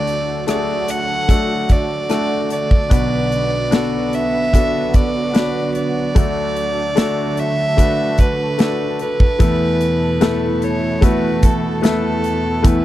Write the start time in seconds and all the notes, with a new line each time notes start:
Already playing: D2 D3 F#3 A3 D4 F#4 A4 D5
0.07 closed hi-hat
0.47 A3 D4 F#4 G#4 D5, cross-stick, closed hi-hat
0.55 A4
0.88 F#5, closed hi-hat
1.28 A3 D4 F#4 A4, kick, closed hi-hat
1.69 D5, kick, closed hi-hat
2.09 A3 D4 F#4 A4, cross-stick, closed hi-hat
2.50 D5, closed hi-hat
2.71 kick
2.90 B1 B2 F#3 B3 D4 F#4 B4, kick, closed hi-hat
3.32 closed hi-hat
3.71 B3 D4 F#4 A4, snare, closed hi-hat
4.13 E5, closed hi-hat
4.53 B3 D4 F#4 A4, kick, closed hi-hat
4.94 D5, kick, closed hi-hat
5.33 B3 D4 F#4 B4, snare, closed hi-hat
5.75 D5, closed hi-hat
6.15 D2 D3 A3 D4 F#4 A4, kick, closed hi-hat
6.57 closed hi-hat
6.96 A3 D4 F#4 A4, snare, closed hi-hat
7.37 E5, closed hi-hat
7.77 A3 D4 F#4 B4, kick, closed hi-hat
8.18 B4, kick, closed hi-hat
8.58 A3 D4 F#4 A4, snare, closed hi-hat
8.99 B4, closed hi-hat
9.20 kick
9.39 E2 B2 E3 A3 B3 E4 A4, kick, closed hi-hat
9.81 closed hi-hat
10.21 A3 B3 E4 A4, snare, closed hi-hat
10.62 C#5, closed hi-hat
11.01 A3 B3 E4 F#4 B4, kick, closed hi-hat
11.43 A4, kick, closed hi-hat
11.82 A3 B3 E4 A4 B4, snare, closed hi-hat
12.24 closed hi-hat
12.62 E2 E3 A3 B3 E4 A4 B4, kick, closed hi-hat